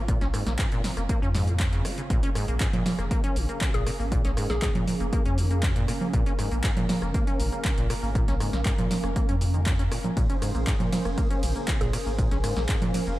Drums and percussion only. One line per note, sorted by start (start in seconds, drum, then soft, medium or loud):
0.08 kick loud
0.08 closed hi-hat medium
0.08 cabasa soft
0.21 snare soft
0.21 closed hi-hat soft
0.21 cabasa soft
0.34 cross-stick medium
0.34 open hi-hat loud
0.34 cabasa medium
0.47 snare medium
0.47 closed hi-hat medium
0.47 cabasa soft
0.59 kick loud
0.59 clap loud
0.59 closed hi-hat medium
0.59 cabasa soft
0.72 closed hi-hat soft
0.72 cabasa soft
0.84 snare medium
0.84 open hi-hat loud
0.84 cabasa medium
0.97 cross-stick medium
0.97 closed hi-hat medium
0.97 cabasa soft
1.09 kick loud
1.09 closed hi-hat medium
1.09 cabasa soft
1.23 cabasa soft
1.34 snare medium
1.34 open hi-hat loud
1.34 cabasa medium
1.47 closed hi-hat medium
1.47 cabasa soft
1.60 kick loud
1.60 clap loud
1.60 closed hi-hat medium
1.60 cabasa soft
1.73 closed hi-hat soft
1.73 cabasa soft
1.85 cross-stick medium
1.85 open hi-hat loud
1.85 cabasa medium
1.98 closed hi-hat medium
1.98 cabasa soft
2.10 kick loud
2.10 closed hi-hat medium
2.10 cabasa soft
2.23 closed hi-hat medium
2.23 cabasa soft
2.35 cross-stick medium
2.35 open hi-hat loud
2.35 cabasa medium
2.48 closed hi-hat soft
2.48 cabasa soft
2.60 kick loud
2.60 clap loud
2.60 closed hi-hat medium
2.60 cabasa soft
2.73 closed hi-hat medium
2.73 low conga loud
2.73 cabasa soft
2.86 snare medium
2.86 open hi-hat loud
2.86 low conga medium
2.86 cabasa medium
2.99 cross-stick medium
2.99 closed hi-hat soft
2.99 cabasa soft
3.11 kick loud
3.11 closed hi-hat medium
3.11 cabasa soft
3.24 closed hi-hat medium
3.24 cabasa soft
3.36 open hi-hat loud
3.36 cabasa medium
3.49 closed hi-hat soft
3.49 cabasa soft
3.61 kick loud
3.61 clap loud
3.61 closed hi-hat medium
3.61 cabasa soft
3.74 closed hi-hat medium
3.74 cabasa soft
3.87 cross-stick medium
3.87 open hi-hat loud
3.87 cabasa medium
4.00 cabasa soft
4.12 kick loud
4.12 closed hi-hat medium
4.12 cabasa soft
4.25 snare soft
4.25 closed hi-hat medium
4.25 cabasa soft
4.37 cross-stick medium
4.37 open hi-hat loud
4.37 cabasa medium
4.50 snare medium
4.50 closed hi-hat soft
4.50 cabasa soft
4.62 kick loud
4.62 clap loud
4.62 closed hi-hat medium
4.62 cabasa soft
4.75 closed hi-hat medium
4.75 low conga loud
4.75 cabasa soft
4.87 open hi-hat loud
4.87 low conga medium
4.87 cabasa medium
5.00 closed hi-hat soft
5.00 cabasa soft
5.13 kick loud
5.13 closed hi-hat medium
5.13 cabasa soft
5.25 closed hi-hat medium
5.25 cabasa soft
5.38 open hi-hat loud
5.38 cabasa medium
5.51 closed hi-hat soft
5.51 cabasa soft
5.63 kick loud
5.63 clap loud
5.63 closed hi-hat medium
5.63 cabasa soft
5.76 closed hi-hat medium
5.76 cabasa soft
5.88 cross-stick medium
5.88 open hi-hat loud
5.88 cabasa medium
6.01 low conga medium
6.01 cabasa soft
6.13 kick loud
6.13 closed hi-hat medium
6.13 cabasa soft
6.26 closed hi-hat soft
6.26 cabasa soft
6.39 cross-stick medium
6.39 open hi-hat loud
6.39 cabasa medium
6.52 closed hi-hat soft
6.52 cabasa soft
6.64 kick loud
6.64 clap loud
6.64 closed hi-hat medium
6.64 cabasa soft
6.77 closed hi-hat medium
6.77 low conga loud
6.77 cabasa soft
6.89 snare medium
6.89 open hi-hat loud
6.89 low conga medium
6.89 cabasa medium
7.02 cross-stick medium
7.02 closed hi-hat soft
7.02 cabasa soft
7.14 kick loud
7.14 closed hi-hat medium
7.14 cabasa soft
7.27 closed hi-hat medium
7.27 cabasa soft
7.40 open hi-hat loud
7.40 cabasa medium
7.52 closed hi-hat soft
7.52 cabasa soft
7.65 kick loud
7.65 clap loud
7.65 closed hi-hat medium
7.65 cabasa soft
7.78 closed hi-hat medium
7.78 cabasa soft
7.90 cross-stick medium
7.90 open hi-hat loud
7.90 cabasa medium
8.04 cabasa soft
8.15 kick loud
8.15 closed hi-hat medium
8.15 cabasa soft
8.28 snare soft
8.28 closed hi-hat medium
8.28 cabasa soft
8.40 cross-stick medium
8.40 open hi-hat loud
8.40 cabasa medium
8.53 snare medium
8.53 closed hi-hat soft
8.53 cabasa soft
8.65 kick loud
8.65 clap loud
8.65 closed hi-hat medium
8.65 cabasa soft
8.78 closed hi-hat medium
8.78 low conga medium
8.78 cabasa soft
8.91 snare medium
8.91 open hi-hat loud
8.91 low conga medium
8.91 cabasa medium
9.04 cross-stick medium
9.04 closed hi-hat soft
9.04 cabasa soft
9.16 kick loud
9.16 closed hi-hat medium
9.16 cabasa soft
9.29 closed hi-hat soft
9.29 cabasa soft
9.41 open hi-hat loud
9.41 cabasa medium
9.54 closed hi-hat soft
9.54 cabasa soft
9.66 kick loud
9.66 clap loud
9.66 closed hi-hat medium
9.66 cabasa soft
9.79 closed hi-hat soft
9.79 cabasa soft
9.92 cross-stick medium
9.92 open hi-hat loud
9.92 cabasa medium
10.04 closed hi-hat soft
10.04 low conga medium
10.04 cabasa soft
10.17 kick loud
10.17 closed hi-hat medium
10.17 ride medium
10.17 cabasa soft
10.30 closed hi-hat soft
10.30 cabasa soft
10.42 cross-stick medium
10.42 open hi-hat loud
10.42 ride medium
10.42 cabasa medium
10.55 closed hi-hat soft
10.55 cabasa soft
10.67 kick loud
10.67 clap loud
10.67 closed hi-hat medium
10.67 ride medium
10.67 cabasa soft
10.80 closed hi-hat soft
10.80 low conga medium
10.80 cabasa soft
10.92 snare medium
10.92 open hi-hat loud
10.92 ride medium
10.92 low conga medium
10.92 cabasa medium
11.05 cross-stick medium
11.05 closed hi-hat soft
11.05 cabasa soft
11.18 kick loud
11.18 closed hi-hat medium
11.18 ride medium
11.18 cabasa soft
11.31 closed hi-hat soft
11.31 cabasa soft
11.43 open hi-hat loud
11.43 ride medium
11.43 cabasa medium
11.56 closed hi-hat soft
11.56 cabasa soft
11.68 kick loud
11.68 clap loud
11.68 closed hi-hat medium
11.68 ride medium
11.68 cabasa soft
11.81 closed hi-hat medium
11.81 cabasa soft
11.93 cross-stick medium
11.93 open hi-hat loud
11.93 ride medium
11.93 cabasa medium
12.07 cabasa soft
12.19 kick loud
12.19 closed hi-hat medium
12.19 ride medium
12.19 cabasa soft
12.31 snare soft
12.31 closed hi-hat soft
12.31 cabasa soft
12.44 cross-stick medium
12.44 open hi-hat loud
12.44 ride medium
12.44 cabasa medium
12.57 snare medium
12.57 closed hi-hat soft
12.57 cabasa soft
12.69 kick loud
12.69 clap loud
12.69 closed hi-hat medium
12.69 ride medium
12.69 cabasa soft
12.82 closed hi-hat medium
12.82 low conga medium
12.82 cabasa soft
12.94 open hi-hat loud
12.94 ride medium
12.94 low conga medium
12.94 cabasa medium
13.07 closed hi-hat soft
13.07 cabasa soft